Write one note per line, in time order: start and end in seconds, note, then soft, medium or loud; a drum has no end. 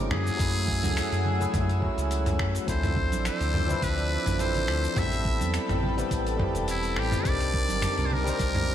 0.00 0.12 G1 medium
0.00 0.36 F#3 medium
0.00 0.13 G3 loud
0.00 0.36 A3 medium
0.00 0.13 A#3 loud
0.00 0.13 C4 medium
0.00 0.36 C#4 medium
0.00 0.13 D4 medium
0.00 0.13 D#4 loud
0.00 0.37 E4 medium
0.00 0.37 G#4 medium
0.00 0.12 C5 loud
0.11 0.30 F#2 loud
0.11 2.65 A3 medium
0.11 1.79 G#4 loud
0.11 2.65 F#5 medium
0.11 2.65 G#5 medium
0.11 2.65 E6 loud
0.11 finger snap medium
0.11 mid tom medium
0.27 shaker medium
0.37 0.85 F#2 medium
0.37 1.36 F#3 loud
0.37 1.36 A3 medium
0.37 1.37 C#4 medium
0.37 1.37 E4 medium
0.37 kick loud
0.37 open hi-hat medium
0.37 shaker medium
0.42 1.38 G#4 loud
0.55 open hi-hat soft
0.55 shaker soft
0.68 kick loud
0.83 1.02 C#2 loud
0.83 mid tom medium
0.83 open hi-hat soft
0.83 high conga loud
0.83 shaker medium
0.97 finger snap medium
0.97 open hi-hat medium
0.97 shaker medium
1.12 1.47 F#2 medium
1.12 open hi-hat soft
1.12 shaker soft
1.25 high conga medium
1.25 low conga medium
1.39 1.78 F#3 medium
1.39 1.79 A3 medium
1.39 1.80 C#4 medium
1.39 1.80 E4 medium
1.39 1.80 G#4 medium
1.39 open hi-hat soft
1.39 low conga medium
1.39 shaker medium
1.54 1.89 F#2 medium
1.54 kick loud
1.54 mid tom medium
1.54 open hi-hat medium
1.54 shaker medium
1.69 open hi-hat soft
1.69 shaker soft
1.80 2.64 F#3 medium
1.80 2.64 A3 medium
1.80 2.65 C#4 medium
1.80 2.65 E4 medium
1.80 kick medium
1.84 2.66 F#4 loud
1.98 2.41 C#2 medium
1.98 open hi-hat soft
1.98 shaker medium
2.11 open hi-hat medium
2.11 shaker medium
2.26 mid tom medium
2.26 open hi-hat soft
2.26 shaker soft
2.39 2.59 F#2 medium
2.39 finger snap medium
2.39 kick medium
2.55 open hi-hat soft
2.55 shaker medium
2.65 3.14 D2 loud
2.65 3.64 F3 medium
2.65 3.65 C4 medium
2.65 3.66 D4 medium
2.65 3.66 E4 medium
2.65 4.95 D5 medium
2.65 4.95 E6 medium
2.65 kick loud
2.65 open hi-hat medium
2.65 shaker medium
2.70 3.67 A4 loud
2.70 3.22 C5 medium
2.83 mid tom medium
2.83 open hi-hat soft
2.83 shaker soft
2.96 kick loud
3.12 3.30 A1 loud
3.12 open hi-hat soft
3.12 high conga medium
3.12 shaker medium
3.25 3.85 C5 loud
3.25 finger snap medium
3.25 open hi-hat medium
3.25 shaker medium
3.41 3.75 D2 medium
3.41 open hi-hat soft
3.41 shaker soft
3.54 mid tom medium
3.54 high conga medium
3.54 low conga medium
3.67 4.35 F3 loud
3.67 4.36 C4 medium
3.67 4.36 D4 medium
3.67 4.37 E4 medium
3.67 open hi-hat soft
3.67 low conga medium
3.67 shaker medium
3.72 4.38 B4 loud
3.82 4.18 D2 medium
3.82 4.42 B4 loud
3.82 kick loud
3.82 open hi-hat medium
3.82 shaker medium
3.98 open hi-hat soft
3.98 shaker soft
4.26 4.70 A1 medium
4.26 mid tom medium
4.26 open hi-hat soft
4.26 shaker medium
4.38 4.93 F3 medium
4.38 4.93 C4 medium
4.38 4.93 D4 medium
4.38 4.94 E4 medium
4.38 4.94 A4 medium
4.38 5.00 C5 loud
4.38 open hi-hat medium
4.38 shaker medium
4.55 open hi-hat soft
4.55 low conga medium
4.55 shaker soft
4.68 4.88 D2 loud
4.68 finger snap medium
4.84 shaker medium
4.94 5.42 A1 loud
4.94 5.93 G3 medium
4.94 5.93 B3 medium
4.94 5.94 C4 medium
4.94 5.95 E4 loud
4.94 7.23 A4 medium
4.94 7.23 G5 medium
4.94 8.75 A5 medium
4.94 7.23 B5 medium
4.94 kick loud
4.94 mid tom medium
4.94 open hi-hat medium
4.94 shaker medium
4.98 5.95 A4 loud
4.98 5.55 E5 loud
5.12 open hi-hat soft
5.12 shaker soft
5.25 kick loud
5.41 5.59 E2 loud
5.41 open hi-hat soft
5.41 high conga medium
5.41 shaker medium
5.54 finger snap medium
5.54 open hi-hat medium
5.54 shaker medium
5.69 6.04 A1 medium
5.69 mid tom medium
5.69 open hi-hat soft
5.69 shaker soft
5.83 high conga medium
5.83 low conga medium
5.97 6.36 G3 medium
5.97 6.37 B3 medium
5.97 6.37 C4 medium
5.97 6.37 E4 medium
5.97 6.38 B4 medium
5.97 open hi-hat soft
5.97 low conga medium
5.97 shaker medium
6.11 6.47 A1 loud
6.11 kick loud
6.11 open hi-hat medium
6.11 shaker medium
6.27 open hi-hat soft
6.27 shaker soft
6.37 7.21 G3 medium
6.37 7.22 B3 medium
6.37 7.22 C4 medium
6.37 7.23 E4 medium
6.37 kick medium
6.37 mid tom medium
6.42 7.23 G4 loud
6.55 6.98 E1 medium
6.55 open hi-hat soft
6.55 shaker medium
6.68 7.00 E4 loud
6.68 open hi-hat medium
6.68 shaker medium
6.83 open hi-hat soft
6.83 shaker soft
6.96 7.16 A1 loud
6.96 7.29 G4 loud
6.96 finger snap medium
7.12 mid tom medium
7.12 open hi-hat soft
7.12 shaker medium
7.23 7.71 C2 loud
7.23 8.21 G3 loud
7.23 8.22 C4 medium
7.23 8.23 D4 medium
7.23 8.23 D#4 medium
7.23 8.75 A#4 medium
7.23 8.75 D6 medium
7.23 kick loud
7.23 open hi-hat medium
7.23 shaker medium
7.27 8.24 A#4 loud
7.27 8.07 D5 loud
7.41 open hi-hat soft
7.41 shaker soft
7.54 kick loud
7.69 7.87 G1 loud
7.69 open hi-hat soft
7.69 high conga medium
7.69 shaker medium
7.82 finger snap medium
7.82 mid tom medium
7.82 open hi-hat medium
7.82 shaker medium
7.98 8.33 C2 medium
7.98 open hi-hat soft
7.98 shaker soft
8.06 8.15 C5 medium
8.11 8.75 A#4 loud
8.11 high conga medium
8.11 low conga medium
8.24 8.75 G3 loud
8.24 8.75 C4 medium
8.24 8.75 D4 medium
8.24 8.75 D#4 medium
8.24 open hi-hat soft
8.24 low conga medium
8.24 shaker medium
8.29 8.75 C5 loud
8.39 8.75 C2 loud
8.39 kick loud
8.39 open hi-hat medium
8.39 shaker medium
8.55 mid tom medium
8.55 open hi-hat soft
8.55 shaker soft